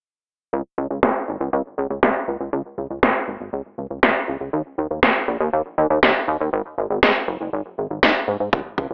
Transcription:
0.53 0.62 C#2 medium
0.78 0.87 C#2 medium
0.90 0.99 C#2 medium
1.03 1.12 C#2 medium
1.03 snare loud
1.28 1.37 G#1 medium
1.40 1.49 C#2 medium
1.53 1.62 C#2 loud
1.78 1.87 C#2 medium
1.90 1.99 C#2 medium
2.03 2.12 C#2 loud
2.03 snare loud
2.28 2.37 C#2 medium
2.40 2.49 C#2 medium
2.53 2.62 C#2 loud
2.78 2.87 C#2 medium
2.90 2.99 C#2 medium
3.03 3.12 G#1 medium
3.03 snare loud
3.28 3.37 G#1 medium
3.40 3.49 G#1 medium
3.53 3.62 C#2 loud
3.78 3.87 C#2 medium
3.90 3.99 C#2 medium
4.03 4.12 C#2 loud
4.03 snare loud
4.28 4.37 C#2 medium
4.41 4.49 C#2 medium
4.53 4.62 D#2 loud
4.78 4.87 D#2 medium
4.91 4.99 D#2 medium
5.03 5.12 D#2 medium
5.03 snare loud
5.28 5.37 A#1 medium
5.40 5.49 D#2 medium
5.53 5.62 D#2 loud
5.78 5.87 D#2 medium
5.90 5.99 D#2 medium
6.03 6.12 D#2 loud
6.03 snare loud
6.28 6.37 D#2 medium
6.40 6.49 D#2 medium
6.53 6.62 G#1 loud
6.78 6.87 G#1 medium
6.90 6.99 G#1 medium
7.03 7.12 G#2 loud
7.03 snare loud
7.28 7.37 F#1 medium
7.41 7.49 F#1 medium
7.53 7.62 G#1 medium
7.78 7.87 G#1 medium
7.90 7.99 G#1 medium
8.03 8.12 G#2 loud
8.03 snare loud
8.28 8.37 G#2 medium
8.40 8.49 G#2 medium
8.53 8.62 C#2 loud
8.53 kick loud
8.78 8.87 C#2 medium
8.78 kick medium
8.91 8.94 C#2 medium

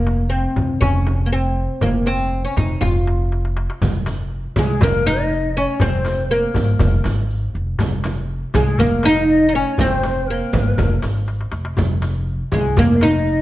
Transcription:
0.00 0.44 F1 medium
0.00 0.29 A#3 medium
0.07 darbuka tek medium
0.07 frame drum medium
0.19 darbuka ka soft
0.30 0.82 C4 medium
0.44 darbuka ka soft
0.56 0.77 F1 medium
0.56 darbuka dum medium
0.56 frame drum medium
0.81 1.65 F1 medium
0.81 1.25 C#4 medium
0.81 frame drum medium
0.81 darbuka dum medium
0.95 darbuka ka soft
1.07 darbuka tek medium
1.07 frame drum medium
1.19 darbuka ka soft
1.26 1.32 A#3 medium
1.32 1.82 C4 medium
1.81 2.45 F1 medium
1.81 2.08 A#3 medium
1.81 darbuka dum medium
1.81 frame drum medium
1.95 darbuka ka soft
2.06 2.44 C4 medium
2.06 darbuka tek medium
2.06 frame drum medium
2.32 darbuka ka soft
2.45 2.57 C#4 medium
2.45 darbuka ka soft
2.57 2.78 F1 medium
2.57 2.80 D#4 medium
2.57 frame drum medium
2.57 darbuka dum medium
2.81 3.66 F1 medium
2.81 3.52 F4 medium
2.81 frame drum medium
2.81 darbuka dum medium
3.07 darbuka tek medium
3.20 darbuka ka soft
3.32 darbuka tek soft
3.45 darbuka ka medium
3.57 darbuka tek medium
3.70 darbuka ka medium
3.81 4.44 F1 medium
3.81 riq medium
3.81 darbuka dum medium
3.81 frame drum loud
4.06 riq medium
4.06 darbuka tek medium
4.06 frame drum medium
4.56 4.77 C2 medium
4.56 4.83 G#3 medium
4.56 4.84 G#4 medium
4.56 riq medium
4.56 frame drum loud
4.56 darbuka dum medium
4.81 5.65 F1 medium
4.81 5.08 A#3 medium
4.81 5.08 A#4 medium
4.81 riq medium
4.81 darbuka dum loud
4.81 frame drum loud
5.06 5.56 D#4 loud
5.06 5.58 D#5 medium
5.06 riq medium
5.06 frame drum medium
5.31 riq soft
5.55 5.82 C#4 medium
5.55 5.74 C#5 medium
5.55 darbuka ka soft
5.68 darbuka ka soft
5.74 5.84 C#5 medium
5.80 6.43 F1 medium
5.80 6.31 C4 medium
5.80 6.33 C5 medium
5.80 riq medium
5.80 darbuka dum medium
5.80 frame drum medium
6.05 riq medium
6.05 darbuka tek medium
6.05 frame drum medium
6.31 7.01 A#3 medium
6.31 7.05 A#4 medium
6.54 6.76 G#1 medium
6.54 riq medium
6.54 darbuka dum medium
6.54 frame drum medium
6.79 7.01 F1 loud
6.79 riq medium
6.79 darbuka dum medium
6.79 frame drum loud
7.04 7.47 G#1 medium
7.04 riq medium
7.04 darbuka tek medium
7.04 frame drum medium
7.30 riq soft
7.54 7.76 F1 medium
7.54 darbuka ka soft
7.67 darbuka ka soft
7.79 8.42 F1 medium
7.79 riq medium
7.79 darbuka dum medium
7.79 frame drum medium
8.04 riq medium
8.04 darbuka tek medium
8.04 frame drum medium
8.54 8.75 C2 loud
8.54 8.79 G#3 medium
8.54 8.80 G#4 medium
8.54 riq medium
8.54 darbuka dum medium
8.54 frame drum loud
8.78 9.62 F1 loud
8.78 9.05 A#3 medium
8.78 9.06 A#4 medium
8.78 riq medium
8.78 darbuka dum medium
8.78 frame drum medium
9.03 9.48 D#4 loud
9.03 9.09 F5 medium
9.03 riq medium
9.03 darbuka tek medium
9.03 frame drum medium
9.08 9.27 D#5 medium
9.28 9.54 D#5 medium
9.28 riq soft
9.49 9.54 D#4 medium
9.53 9.80 C#4 medium
9.53 9.71 C#5 medium
9.53 darbuka ka soft
9.66 darbuka ka soft
9.71 9.79 C#5 medium
9.78 10.41 F1 medium
9.78 10.30 C4 loud
9.78 10.28 C5 medium
9.78 riq medium
9.78 darbuka dum medium
9.78 frame drum loud
10.03 riq soft
10.03 darbuka tek medium
10.03 frame drum medium
10.16 darbuka ka soft
10.27 11.00 A#3 medium
10.27 11.02 A#4 medium
10.41 riq soft
10.41 darbuka ka soft
10.53 10.74 G#1 medium
10.53 riq medium
10.53 darbuka dum medium
10.53 frame drum loud
10.78 10.99 F1 medium
10.78 riq medium
10.78 darbuka dum medium
10.78 frame drum loud
10.90 darbuka ka soft
11.02 11.45 G#1 medium
11.02 riq soft
11.02 darbuka tek medium
11.02 frame drum medium
11.15 riq soft
11.15 darbuka ka soft
11.27 riq soft
11.27 darbuka tek medium
11.41 darbuka ka medium
11.52 11.73 F1 medium
11.52 riq soft
11.52 darbuka tek medium
11.65 darbuka ka medium
11.77 12.40 F1 medium
11.77 riq medium
11.77 darbuka dum medium
11.77 frame drum medium
12.02 riq medium
12.02 darbuka tek medium
12.02 frame drum medium
12.52 12.73 C2 medium
12.52 12.76 G#3 medium
12.52 12.79 G#4 medium
12.52 riq medium
12.52 darbuka dum medium
12.52 frame drum loud
12.77 13.42 F1 loud
12.77 13.03 A#3 medium
12.77 12.97 A#4 medium
12.77 riq medium
12.77 darbuka dum medium
12.77 frame drum loud
12.96 13.03 F5 medium
13.01 13.42 D#4 loud
13.01 13.42 D#5 medium
13.01 riq soft
13.01 darbuka tek medium
13.01 frame drum medium
13.27 riq soft

